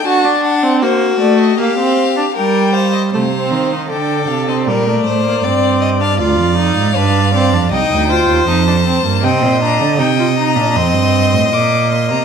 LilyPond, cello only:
\new Staff \with { instrumentName = "Cello" } { \clef bass \time 4/4 \key c \minor \tempo 4 = 79 r1 | c8 ees8 d8 c8 bes,8 a,8 g,4 | d,16 f,8 aes,16 g,8. f,16 c,16 d,8 ees,16 f,8. g,16 | \key c \dorian c16 bes,8 d16 c8. bes,16 f,16 g,8 a,16 bes,8. c16 | }